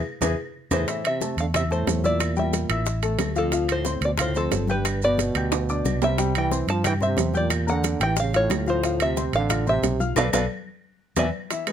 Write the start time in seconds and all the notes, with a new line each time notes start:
Already playing: F5
0.21 E2 E4 G#4 B4, low bongo, low conga, high timbale, claves, maracas
0.71 E2 A2 E4 G#4 B4 C5, low bongo, low conga, high timbale, claves, maracas
0.87 E3 E4 E5, high bongo, high conga, high timbale, maracas
1.04 C3 E5, high conga, high timbale, claves, maracas
1.21 A3 A4 A5, high bongo, high conga, low timbale, maracas
1.37 E2 D3 F5, high bongo, high conga, high timbale, maracas
1.54 C3 E4 E5 E6, high bongo, high conga, low conga, high timbale, claves, maracas
1.71 A2 A3 A4 C5 A5, high bongo, high conga, maracas
1.87 E2, high bongo, low bongo, high conga, high timbale, low timbale, maracas
2.04 A#2 E4 D5 E5 E6, high bongo, high conga, maracas
2.20 high bongo, high conga, high timbale, claves, maracas
2.36 A#2 G3 G4 E5 G5, high conga, maracas
2.53 high bongo, high conga, high timbale, low timbale, maracas
2.69 A1 E4 E5 E6, high bongo, high timbale, claves, maracas
2.86 high bongo, high conga, maracas
3.02 A3 A4 A5, high bongo, high conga, high timbale, maracas
3.18 D2, high bongo, low bongo, high conga, high timbale, low timbale, claves, maracas
3.35 F2 F3 F4 A4 F5, high bongo, maracas
3.52 F3 F4 F5, high bongo, high conga, high timbale, maracas
3.69 A2 C5, high conga, high timbale, claves, maracas
3.85 C4 C5 C6, high bongo, high conga, low timbale, maracas
4.01 D2 B2 D5, high bongo, high conga, high timbale, maracas
4.18 A2 F4 C5 F5 F6, high bongo, high conga, low conga, high timbale, claves, maracas
4.35 F2 C4 A4 C5 C6, high bongo, high conga, maracas
4.51 G1, high bongo, low bongo, high conga, high timbale, low timbale, maracas
4.67 G2 G4 B4 G5 G6, high bongo, high conga, maracas
4.85 high bongo, high conga, high timbale, claves, maracas
5.01 B2 B3 B4 D5 B5, high conga, maracas
5.18 high bongo, high conga, high timbale, low timbale, maracas
5.35 D2 G4 G5 G6, high bongo, high timbale, claves, maracas
5.51 high bongo, high conga, high timbale, maracas
5.68 D4 D5 D6, high bongo, high conga, maracas
5.85 C2, high bongo, low bongo, high conga, claves, maracas
6.02 C3 G3 G4 E5 G5, high bongo, low timbale, maracas
6.18 G3 G4 G5, high bongo, high timbale, maracas
6.35 E3 G5, high conga, high timbale, claves, maracas
6.51 C4 C5 C6, high bongo, high conga, low timbale, maracas
6.67 G2 F3 A5, high bongo, high timbale, maracas
6.84 E3 G4 G5 G6, high bongo, high conga, low conga, high timbale, claves, maracas
7.00 C3 C4 C5 E5 C6, high bongo, high conga, low conga, maracas
7.17 E2, high bongo, low bongo, high conga, high timbale, low timbale, maracas
7.33 A#2 G4 D5 G5 G6, high bongo, high conga, maracas
7.50 high bongo, high timbale, claves, maracas
7.67 D3 A#3 A#4 F#5 A#5, high conga, maracas
7.84 high bongo, high conga, high timbale, low timbale, maracas
8.00 A1 E3 G4 G5 G6, high bongo, high timbale, claves, maracas
8.17 C#3 F5, high bongo, high conga, maracas
8.33 A2 F4 C#5 F5 F6, high bongo, high conga, high timbale, maracas
8.50 D2, high bongo, low bongo, high conga, high timbale, low timbale, claves, maracas
8.66 A2 F3 F4 C5 F5, high bongo, maracas
8.83 F3 F4 F5, high bongo, high conga, high timbale, maracas
9.00 C3 E5, high conga, high timbale, claves, maracas
9.17 C4 C5 C6, high bongo, high conga, low timbale, maracas
9.33 A1 D3 F5, high bongo, high conga, high timbale, maracas
9.50 F4 F5 F6, high bongo, high conga, low conga, high timbale, claves, maracas
9.67 C3 C4 C5 E5 C6, high bongo, high conga, low conga, maracas
9.82 B1, high bongo, low bongo, high conga, high timbale, low timbale, maracas
10.00 F4 F5 F6, high bongo, high conga, maracas
10.16 B1 B2 A4 B4 D5 F5, high bongo, high conga, high timbale, claves, maracas
10.33 B1 B2 A4 B4 D5 F5, high bongo, high conga, high timbale, claves, maracas
11.16 E2 B2 B4 D5 E5 G#5, high bongo, high conga, high timbale, claves, maracas
11.50 E3 E4 E5, high bongo, high conga, high timbale, maracas
11.67 G#3 G#4 B4, high conga, high timbale, claves, maracas